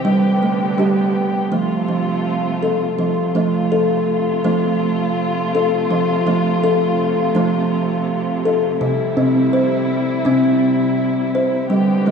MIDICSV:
0, 0, Header, 1, 3, 480
1, 0, Start_track
1, 0, Tempo, 727273
1, 42, Time_signature, 4, 2, 24, 8
1, 7993, End_track
2, 0, Start_track
2, 0, Title_t, "String section"
2, 0, Program_c, 0, 48
2, 0, Note_on_c, 0, 67, 67
2, 36, Note_on_c, 0, 59, 54
2, 39, Note_on_c, 0, 50, 58
2, 982, Note_off_c, 0, 67, 0
2, 995, Note_off_c, 0, 59, 0
2, 996, Note_off_c, 0, 50, 0
2, 1012, Note_on_c, 0, 57, 57
2, 1012, Note_on_c, 0, 65, 68
2, 1014, Note_on_c, 0, 48, 64
2, 1963, Note_off_c, 0, 48, 0
2, 1964, Note_off_c, 0, 57, 0
2, 1964, Note_off_c, 0, 65, 0
2, 1971, Note_on_c, 0, 48, 64
2, 1972, Note_on_c, 0, 65, 74
2, 1976, Note_on_c, 0, 57, 58
2, 5785, Note_off_c, 0, 65, 0
2, 5787, Note_off_c, 0, 57, 0
2, 5809, Note_on_c, 0, 55, 64
2, 5810, Note_on_c, 0, 64, 73
2, 7698, Note_off_c, 0, 48, 0
2, 7704, Note_off_c, 0, 55, 0
2, 7705, Note_off_c, 0, 64, 0
2, 7731, Note_on_c, 0, 67, 66
2, 7734, Note_on_c, 0, 50, 62
2, 7736, Note_on_c, 0, 59, 57
2, 7993, Note_off_c, 0, 50, 0
2, 7993, Note_off_c, 0, 59, 0
2, 7993, Note_off_c, 0, 67, 0
2, 7993, End_track
3, 0, Start_track
3, 0, Title_t, "Kalimba"
3, 0, Program_c, 1, 108
3, 32, Note_on_c, 1, 55, 89
3, 283, Note_on_c, 1, 57, 62
3, 426, Note_off_c, 1, 55, 0
3, 516, Note_on_c, 1, 55, 73
3, 524, Note_off_c, 1, 57, 0
3, 525, Note_on_c, 1, 67, 66
3, 909, Note_off_c, 1, 55, 0
3, 1001, Note_on_c, 1, 53, 74
3, 1004, Note_on_c, 1, 57, 71
3, 1007, Note_off_c, 1, 67, 0
3, 1198, Note_off_c, 1, 53, 0
3, 1244, Note_on_c, 1, 53, 68
3, 1488, Note_off_c, 1, 57, 0
3, 1733, Note_on_c, 1, 69, 63
3, 1829, Note_off_c, 1, 53, 0
3, 1970, Note_on_c, 1, 53, 84
3, 1972, Note_off_c, 1, 69, 0
3, 2165, Note_off_c, 1, 53, 0
3, 2212, Note_on_c, 1, 53, 76
3, 2217, Note_on_c, 1, 57, 70
3, 2454, Note_on_c, 1, 69, 74
3, 2455, Note_off_c, 1, 57, 0
3, 2794, Note_off_c, 1, 53, 0
3, 2933, Note_on_c, 1, 53, 84
3, 2934, Note_off_c, 1, 69, 0
3, 2936, Note_on_c, 1, 57, 77
3, 3127, Note_off_c, 1, 53, 0
3, 3415, Note_off_c, 1, 57, 0
3, 3661, Note_on_c, 1, 69, 70
3, 3897, Note_off_c, 1, 69, 0
3, 3898, Note_on_c, 1, 53, 88
3, 4090, Note_off_c, 1, 53, 0
3, 4135, Note_on_c, 1, 53, 80
3, 4140, Note_on_c, 1, 57, 71
3, 4377, Note_off_c, 1, 57, 0
3, 4379, Note_on_c, 1, 69, 75
3, 4715, Note_off_c, 1, 53, 0
3, 4850, Note_on_c, 1, 53, 84
3, 4856, Note_off_c, 1, 69, 0
3, 4859, Note_on_c, 1, 57, 80
3, 5045, Note_off_c, 1, 53, 0
3, 5335, Note_off_c, 1, 57, 0
3, 5580, Note_on_c, 1, 69, 76
3, 5815, Note_off_c, 1, 69, 0
3, 5815, Note_on_c, 1, 48, 86
3, 6006, Note_off_c, 1, 48, 0
3, 6052, Note_on_c, 1, 48, 80
3, 6052, Note_on_c, 1, 60, 69
3, 6290, Note_off_c, 1, 60, 0
3, 6291, Note_on_c, 1, 72, 69
3, 6630, Note_off_c, 1, 48, 0
3, 6765, Note_on_c, 1, 48, 85
3, 6769, Note_off_c, 1, 72, 0
3, 6772, Note_on_c, 1, 60, 81
3, 6959, Note_off_c, 1, 48, 0
3, 7248, Note_off_c, 1, 60, 0
3, 7491, Note_on_c, 1, 72, 67
3, 7722, Note_on_c, 1, 55, 81
3, 7727, Note_off_c, 1, 72, 0
3, 7916, Note_off_c, 1, 55, 0
3, 7962, Note_on_c, 1, 55, 74
3, 7968, Note_on_c, 1, 57, 67
3, 7993, Note_off_c, 1, 55, 0
3, 7993, Note_off_c, 1, 57, 0
3, 7993, End_track
0, 0, End_of_file